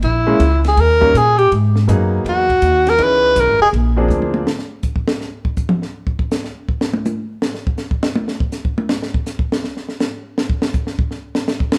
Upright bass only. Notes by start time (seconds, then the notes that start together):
0.03 A#1
0.39 C#2
0.77 D#2
1.14 A#2
1.51 G#2
1.88 F#2
2.25 E2
2.62 D#2
2.98 C#2
3.36 B1
3.48 G#1
3.59 E1
3.73 A#1
4.08 D2